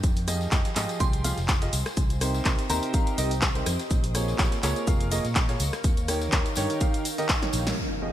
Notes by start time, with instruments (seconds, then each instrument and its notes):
Already playing: ambient pad D#4 A#4 F5
0.04 fingered electric bass F2, ambient pad F4, kick, closed hi-hat, tambourine, shaker
0.16 closed hi-hat, tambourine
0.24 upright piano F3 F4 G4 G#4 D#5, ambient pad G#5, cross-stick, open hi-hat, tambourine, shaker
0.41 snare, tambourine
0.51 fingered electric bass F2, upright piano F3 F4 G4 G#4 D#5, kick, snare, clap, closed hi-hat, tambourine, shaker
0.58 ambient pad C5
0.65 snare, closed hi-hat, tambourine
0.75 fingered electric bass G#2, upright piano F3 F4 G4 G#4 D#5, clap, open hi-hat, tambourine, shaker
0.89 closed hi-hat, tambourine
1.00 fingered electric bass C2, upright piano F3 F4 G4 G#4 G5, synth bell C6, kick, closed hi-hat, tambourine, shaker
1.13 closed hi-hat, tambourine
1.24 upright piano F3 F4 G4 G#4 F5, open hi-hat, tambourine, shaker
1.38 fingered electric bass F1, snare, closed hi-hat, tambourine
1.48 kick, snare, clap, closed hi-hat, tambourine, shaker
1.62 upright piano F4 G4 G#4 D#5, snare, closed hi-hat, tambourine
1.73 fingered electric bass C2, ambient pad C4, open hi-hat, tambourine, shaker
1.82 ambient pad G4, cross-stick, snare, closed hi-hat
1.87 tambourine
1.96 fingered electric bass C2, kick, closed hi-hat, tambourine, shaker
2.10 closed hi-hat, tambourine
2.21 upright piano C3 D#4 G4 A#4 C5, ambient pad D#5, cross-stick, open hi-hat, tambourine, shaker
2.34 snare, tambourine
2.45 fingered electric bass C2, upright piano C3 D#4 G4 A#4 C5, kick, snare, clap, closed hi-hat, tambourine, shaker
2.59 snare, closed hi-hat, tambourine
2.70 fingered electric bass D#2, upright piano C3 D#4 G4 A#4 C5, synth bell A#5, open hi-hat, tambourine, shaker
2.83 closed hi-hat, tambourine
2.94 upright piano C3 D#4 G4 A#4 F5, kick, closed hi-hat, tambourine, shaker
3.07 closed hi-hat, tambourine
3.18 fingered electric bass C2, upright piano C3 D#4 G4 A#4 D#5, open hi-hat, tambourine, shaker
3.31 closed hi-hat, tambourine
3.42 kick, snare, clap, closed hi-hat, tambourine, shaker
3.55 upright piano C3 D#4 G4 A#4 C5, closed hi-hat, tambourine
3.66 fingered electric bass F2, cross-stick, open hi-hat, tambourine, shaker
3.79 snare, closed hi-hat, tambourine
3.91 fingered electric bass A#1, ambient pad A#4, kick, closed hi-hat, tambourine, shaker
4.04 ambient pad C#6, closed hi-hat, tambourine
4.15 upright piano A#3 F4 G#4 A#4 C#5, cross-stick, open hi-hat, tambourine, shaker
4.22 ambient pad F5
4.28 snare, tambourine
4.38 fingered electric bass A#1, upright piano A#3 F4 G#4 A#4 C#5, kick, snare, clap, closed hi-hat, tambourine, shaker
4.52 snare, closed hi-hat, tambourine
4.63 fingered electric bass C#2, upright piano A#3 F4 G#4 A#4 C#5, clap, open hi-hat, tambourine, shaker
4.76 closed hi-hat, tambourine
4.87 fingered electric bass F1, upright piano A#3 F4 G#4 A#4 F5, kick, closed hi-hat, tambourine, shaker
5.01 closed hi-hat, tambourine
5.11 upright piano A#3 F4 G#4 A#4 D#5, open hi-hat, tambourine, shaker
5.25 fingered electric bass A#2, snare, closed hi-hat, tambourine
5.35 kick, snare, clap, closed hi-hat, tambourine, shaker
5.49 upright piano A#3 F4 G#4 A#4 C#5, snare, closed hi-hat, tambourine
5.60 fingered electric bass C#2, open hi-hat, tambourine, shaker
5.73 cross-stick, snare, closed hi-hat, tambourine
5.84 fingered electric bass D#2, ambient pad D#4, kick, closed hi-hat, tambourine, shaker
5.97 closed hi-hat, tambourine
6.08 upright piano D#3 D#4 G4 A#4 C#5, cross-stick, open hi-hat, tambourine, shaker
6.21 snare, closed hi-hat, tambourine
6.32 fingered electric bass D#2, upright piano D#3 D#4 G4 A#4 C#5, kick, snare, clap, closed hi-hat, tambourine, shaker
6.46 snare, closed hi-hat, tambourine
6.55 fingered electric bass G2, upright piano D#3 D#4 G4 A#4 C#5, open hi-hat, tambourine, shaker
6.70 ambient pad G5, closed hi-hat, tambourine
6.80 upright piano D#3 D#4 G4 A#4 F5, kick, closed hi-hat, tambourine, shaker
6.94 closed hi-hat, tambourine
7.05 open hi-hat, tambourine, shaker
7.18 upright piano D#3 D#4 G4 A#4 D#5, closed hi-hat, tambourine
7.29 kick, snare, clap, closed hi-hat, tambourine, shaker
7.42 upright piano D#3 D#4 G4 A#4 C#5, snare, closed hi-hat, tambourine
7.53 fingered electric bass A#1, open hi-hat, tambourine, shaker
7.67 snare, closed hi-hat, tambourine
7.78 ambient pad F4, impact
7.93 ambient pad C5
8.02 upright piano F3 F4 G4 G#4 D#5